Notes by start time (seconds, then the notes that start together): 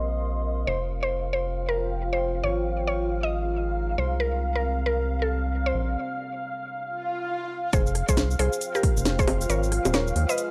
Already playing: A#1 A#4 D#5 F5 C6
0.67 F1 F4 C5 F5
0.90 C5
0.97 G5
1.03 C5
1.33 C5
1.69 A#4
2.13 C5
2.43 G#1 G#4 C#5
2.88 C#5 A#5
3.14 D#5
3.23 D#5
3.98 C2 C4 C5
4.20 A#4
4.39 G4
4.55 A#4
4.70 D5
4.86 A#4
5.22 A4
5.66 C5
5.74 A#1
6.85 swell
7.73 F1 F4 G#4 C5 F5, kick, closed hi-hat, cabasa
7.87 cabasa
7.95 C5, cross-stick, open hi-hat
8.08 C2 G#4 C5 G5, kick, closed hi-hat, cabasa
8.17 snare, closed hi-hat, cabasa
8.31 cabasa
8.39 C2 G#4 C5, open hi-hat
8.53 cabasa
8.61 closed hi-hat, cabasa
8.75 G4 A#4, cabasa
8.83 kick, open hi-hat
8.97 F1, cabasa
9.06 snare, closed hi-hat, cabasa
9.19 G#4 C5, kick, closed hi-hat, cabasa
9.28 cross-stick, open hi-hat, high bongo
9.41 closed hi-hat, cabasa
9.49 G#1 G#4 A#4 C#5, closed hi-hat, cabasa
9.63 cabasa
9.72 cross-stick, open hi-hat
9.85 D#1, closed hi-hat, high bongo, cabasa
9.94 A#4 C#5, snare, closed hi-hat, cabasa
10.07 cabasa
10.16 D#2, open hi-hat
10.20 D#5 A#5
10.29 B4 D#5, cabasa
10.38 closed hi-hat, cabasa